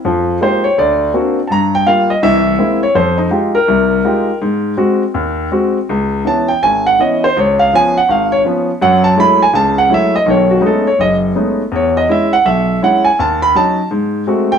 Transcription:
X:1
M:4/4
L:1/8
Q:"Swing" 1/4=164
K:Fm
V:1 name="Grand piano"
z2 c d =d2 z2 | [=ab] g f e =e3 d | c E z B4- B | z8 |
[K:C#m] z2 a =g ^g f d ^B | c ^e g f e c z2 | f a b g a f e d | c F A c d z3 |
c d e f e2 f g | a b a2 z3 =g |]
V:2 name="Grand piano"
[F,,F,]2 [A,B,EFG] z =D,,2 [B,C=D^F] z | G,,2 [G,B,F] z [C,,=E,]2 [^G,B,C=E] z | F,,2 [A,EFG] z C,,2 [A,EFG] z | A,,2 [A,C_G] z E,,2 [A,CG] z |
[K:C#m] C,,2 [E,B,C] z G,,,2 [E,B,C] z | C,,2 [^E,B,C] z G,,,2 [E,B,C] z | [F,,F,]2 [F,G,A,E] z [C,,C,]2 [F,G,A,E] z | [B,,,D,]2 [G,A,B,CD] z F,,,2 [G,A,B,CD] z |
E,,2 [G,CE] z B,,,2 [G,CE] z | D,,2 [F,CD] z G,,2 [G,A,^B,F] z |]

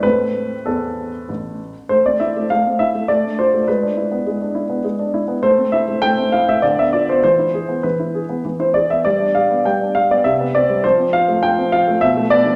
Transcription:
X:1
M:3/4
L:1/16
Q:1/4=101
K:Am
V:1 name="Grand piano"
B4 A6 z2 | c d e2 f2 e2 d2 c2 | B8- B2 z2 | c2 e2 g2 f e d e d c |
c4 B4 z c d e | d2 f2 g2 f d e2 d2 | c2 f2 g2 f2 e2 d2 |]
V:2 name="Grand piano"
[A,,A,C]4 E,,4 A,,,4 | A, C E A, A, C E A, A, D F A, | ^G, D E B, G, D E B, G, D E B, | A, C E A, A, C E A, D, B, F B, |
E, E ^G B, E, E G B, E, E G B, | G, D G B, G, D G B, C, B, C G, | F, C F A, F, C F A, B,, A, B, F, |]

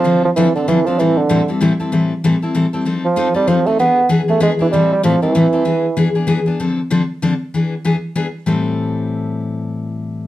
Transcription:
X:1
M:3/4
L:1/8
Q:"Swing" 1/4=193
K:Am
V:1 name="Steel-string acoustic guitar"
[D,F,CDA] z [D,F,CDA] [CDA] [D,F,CDA] [CDA] | [A,,E,G,CEA] z [A,,E,G,CEA] [G,CEA] [A,,E,G,CEA] [G,CEA] | [A,,E,G,CEA] z [A,,E,G,CEA] [G,CEA] [A,,E,G,CEA] [G,CEA] | [F,C_EA] z [F,CEA] [CEA] [F,CEA] [CEA] |
[E,B,D^G] z [E,B,DG] [B,DG] [E,B,DG] [B,DG] | [A,,E,G,CEA] z [A,,E,G,CEA] [G,CEA] [A,,E,G,CEA] [G,CEA] | [E,B,D^G] z [E,B,DG] [B,DG] [E,B,DG] [B,DG] | [D,F,CDA] z [D,F,CDA] z [D,F,CDA] z |
[E,B,D^G] z [E,B,DG] z [E,B,DG] z | [A,,E,G,CEA]6- | [A,,E,G,CEA]6 |]
V:2 name="Bassoon" clef=bass
F, F, E, D, E, F, | E, D,2 z3 | z6 | z F,2 G, F, A, |
B,2 z A, ^G, E, | G, G, F, E,3- | E,3 z3 | z6 |
z6 | z6 | z6 |]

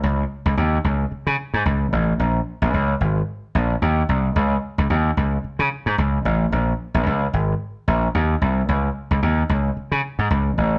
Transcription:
X:1
M:4/4
L:1/16
Q:"Swing 16ths" 1/4=111
K:Cphr
V:1 name="Slap bass" clef=bass
D,,2 z D,, E,,2 D,,2 z D, z A,, D,,2 =A,,,2 | B,,,2 z B,,, D,,2 A,,,2 z2 B,,,2 E,,2 C,,2 | D,,2 z D,, E,,2 D,,2 z D, z A,, D,,2 =A,,,2 | B,,,2 z B,,, D,,2 A,,,2 z2 B,,,2 E,,2 C,,2 |
D,,2 z D,, E,,2 D,,2 z D, z A,, D,,2 =A,,,2 |]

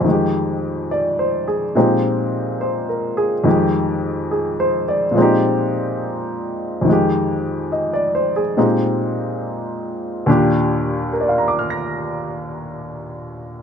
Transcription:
X:1
M:4/4
L:1/16
Q:"Swing" 1/4=70
K:Eb
V:1 name="Grand piano"
z4 (3d2 c2 A2- A z3 (3c2 B2 A2- | A z3 (3A2 c2 d2- d z6 z | z4 e d c A z8 | z4 [Bdfbd'f'b']12 |]
V:2 name="Grand piano" clef=bass
[F,,E,A,G]8 [B,,F,A,CEG]8 | [F,,E,A,G]8 [B,,F,A,CEG]8 | [F,,E,A,G]8 [B,,A,CEG]8 | [E,,B,,DG]16 |]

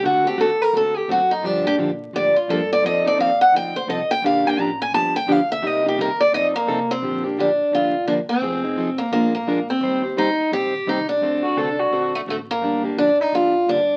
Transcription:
X:1
M:4/4
L:1/16
Q:"Swing" 1/4=172
K:Bb
V:1 name="Steel-string acoustic guitar"
^F2 G2 A2 B2 A2 G2 F2 E2 | D2 G2 z4 d2 F2 A2 d2 | e2 d2 f2 _g2 =g2 c2 e2 g2 | f2 g2 b2 _a2 =a2 g2 f2 =e2 |
e2 G2 B2 d2 e2 B,4 C2- | C2 z2 D4 F4 D2 C2- | C6 B,2 B,2 B,4 C2- | C2 z2 E4 G4 E2 D2- |
D6 z4 A,2 A,2 B,2- | B,2 z2 D2 E2 F4 D4 |]
V:2 name="Violin"
z16 | z16 | z16 | z16 |
z16 | z16 | z16 | z16 |
z2 ^F2 A2 F3 z6 z | z16 |]
V:3 name="Steel-string acoustic guitar"
[D,A,C^FA]2 [CFA]2 [D,A,CFA] z3 [D,A,CFA]2 z2 [D,A,CFA] z3 | [D,F,B,DG]2 [B,DG]2 [D,F,B,DG] z3 [D,F,B,DG]2 z2 [D,F,B,DG] z3 | [F,CEA]2 [CEA]2 [F,CEA] z3 [F,CEA]2 z2 [F,CEA] z3 | [D,F,B,DG]2 [B,DG]2 [D,F,B,DG] z3 [D,F,=B,DG]2 z2 [D,F,B,DG] z3 |
[C,G,B,EG]2 [B,EG]2 [C,G,B,EG] z3 [F,CEA]2 z2 [F,CEA] z3 | [D,F,B,DG]2 [B,DG]2 [D,F,B,DG] z3 [D,F,B,DG]2 z2 [D,F,B,DG] z3 | [F,CE_A]2 [CEA]2 [F,CEA] z3 [F,_A,DFB]2 z2 [F,A,DFB] z3 | [E,G,CGc]2 [CGc]2 [E,G,CGc] z3 [E,G,CGc]2 z2 [E,G,CGc] z3 |
[D,A,C^FA]2 [CFA]2 [D,A,CFA] z3 [D,A,CFA]2 z2 [D,A,CFA] z3 | [D,F,B,DG]2 [B,DG]2 [D,F,B,DG] z3 [D,F,B,DG]2 z2 [D,F,B,DG] z3 |]
V:4 name="Upright bass" clef=bass
D,,4 E,,4 D,,4 ^F,,4 | G,,4 B,,4 A,,2 z2 G,,4 | F,,4 E,,4 D,,4 C,,2 z2 | B,,,4 A,,,4 G,,,4 D,,4 |
C,,4 E,,4 F,,4 C,4 | B,,,8 F,,,8 | F,,,8 B,,,8 | E,,8 B,,,4 C,,4 |
D,,4 C,,4 B,,,4 A,,,4 | G,,,4 B,,,4 A,,,4 G,,,4 |]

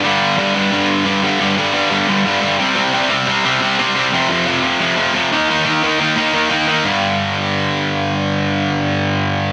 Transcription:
X:1
M:4/4
L:1/8
Q:1/4=176
K:Gm
V:1 name="Distorted electric guitar" clef=bass
[G,,D,G,]2 [G,,D,G,] [G,,D,G,] [G,,D,G,]2 [G,,D,G,] [G,,D,G,] | [G,,D,G,] [G,,D,G,] [G,,D,G,] [G,,D,G,] [G,,D,G,] [G,,D,G,] [G,,D,G,] [C,G,C] | [C,G,C] [C,G,C] [C,G,C] [C,G,C] [C,G,C] [C,G,C] [C,G,C] [C,G,C] | [F,,C,F,] [F,,C,F,] [F,,C,F,] [F,,C,F,] [F,,C,F,] [F,,C,F,] [F,,C,F,] [E,B,E] |
[E,B,E] [E,B,E] [E,B,E] [E,B,E] [E,B,E] [E,B,E] [E,B,E] [E,B,E] | [G,,D,G,]8- | [G,,D,G,]8 |]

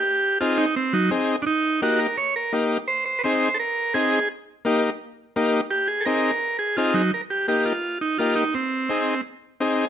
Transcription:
X:1
M:4/4
L:1/8
Q:1/4=170
K:Eb
V:1 name="Transistor combo organ"
G2 F E C [_G,E] z2 | [DE]2 _G B _d B z2 | c c [_c=c]2 [=AB]2 _A2 | z8 |
G A [=AB]3 _A F [_G,E] | B G G F2 E F E | C4 z4 |]
V:2 name="Transistor combo organ"
z2 [CEA] z3 [CEA] z | z2 [B,EG] z3 [B,EG] z | z2 [CEA] z3 [CEA] z | z2 [B,EG] z3 [B,EG] z |
z2 [CEA] z3 [CEA] z | z2 [B,EG] z3 [B,EG] z | z2 [CEA] z3 [CEA] z |]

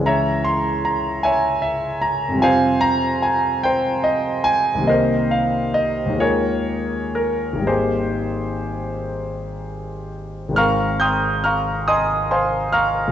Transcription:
X:1
M:6/8
L:1/8
Q:3/8=47
K:Ab
V:1 name="Grand piano"
[d_fb] c' b [dfa] f b | [cfa] b a [cg] e a | [Bce] f e [ABd]2 B | [GAc]4- [GAc] z |
[fbd'f'] [gc'e'g'] [fbd'f'] [eac'e'] [cfac'] [fbd'f'] |]
V:2 name="Grand piano" clef=bass
[D,,_F,A,D_F]6 | [F,,C,G,CF]6 | [C,,E,G,B,E]3 [E,,E,A,B,F]3 | [A,,,E,G,B,E]6 |
[A,,,E,A,CB]6 |]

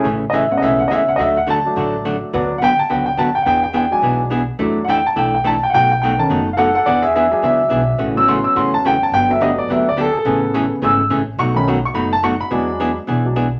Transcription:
X:1
M:4/4
L:1/8
Q:"Swing" 1/4=212
K:A
V:1 name="Upright piano"
z2 [^de] f [de] f [de] f | [^de] f a4 z2 | z2 [f=g] a g g a g | [f=g] g g ^g2 z3 |
z2 [f=g] a g g a g | [f=g] g g a2 z [A=f^f] [Af] | [df] [Ge] [Ge] [Ge] e4 | z e' =c' e' c' a =g a |
=g e ^d =d e d A [^GA]- | [GA]3 z e'2 z2 | c' b z c' b a c' b- | b3 z4 z |]
V:2 name="Upright piano"
z3 [G,B,C]4- [G,B,C] | z3 [F,A,D]4- [F,A,D] | [F,B,D] z6 z | z3 [F,G,D]3 z2 |
[F,A,D] z6 z | z3 [^D,A,C] z4 | z3 [F,G,D]4- [F,G,D] | z [F,B,C]6- [F,B,C] |
z [F,A,B,]3 [F,A,B,] z3 | [C,B,G]4 [C,G,B,] z3 | z [^D,A,C] z6 | [F,G,D]3 z2 [F,G,D] z2 |]
V:3 name="Hollow-body jazz guitar"
[C,E,A,CG] z [C,E,A,CG] z [C,E,A,CG] z [C,E,A,CG] z | [D,F,A,DF] z [D,F,A,DF] z [D,F,A,DF] z [D,F,A,DF] z | [D,F,B,FB] z [D,F,B,FB] z [D,F,B,FB] z [D,F,B,FB] z | [E,B,DG] z [E,B,DG] z [E,B,DG] z [E,B,DG] z |
[E,A,DEA] z [E,A,DEA] z [E,A,DEA] z [E,A,DEA] z | [B,,F,A,^DF] z [B,,F,A,DF] z [B,,F,A,DF] z [B,,F,A,DF] z | [E,B,DG] z [E,B,DG] z [E,B,DG] z [E,B,DG] z | [C,E,A,CF] z [C,E,A,CF] z [C,E,A,CF] z [C,E,A,CF] z |
[D,F,B,D=G] z [D,F,B,DG] z [D,F,B,DG] z [D,F,B,DG] z | [C,E,A,CG] z [C,E,A,CG] z [C,E,A,CG] z [C,E,A,CG] z | [B,,F,A,^DF] z [B,,F,A,DF] z [B,,F,A,DF] z [B,,F,A,DF] z | [E,B,DG] z [E,B,DG] z [E,B,DG] z [E,B,DG] z |]
V:4 name="Upright bass" clef=bass
A,,,2 A,,,2 B,,,2 C,,2 | D,,4 A,,,4 | D,,4 C,,2 D,,2 | E,,4 B,,,4 |
E,,4 B,,,4 | B,,,4 F,,,4 | E,,4 C,,2 B,,,2 | A,,,4 E,,4 |
=G,,,4 D,,4 | A,,,4 G,,,2 A,,,2 | B,,,4 F,,,4 | E,,4 B,,,4 |]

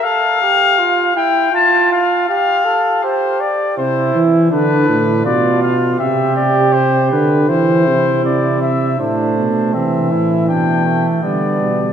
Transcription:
X:1
M:4/4
L:1/8
Q:1/4=80
K:F
V:1 name="Trumpet"
f3 g a f f2 | c d c z =B2 d f | e d c =B c2 d e | c2 e2 g2 d2 |]
V:2 name="Flugelhorn"
A G F E F2 G A | G z E2 D2 F2 | G4 E4 | D2 C E D A, =B,2 |]
V:3 name="Trombone" clef=bass
z8 | z8 | z8 | A,2 E,4 G,2 |]
V:4 name="Bass trombone" clef=bass
z8 | z2 C, E, D, A,, =B,,2 | C,3 D, E, C, C,2 | A,, =B,, C, A,, B,,2 D, B,, |]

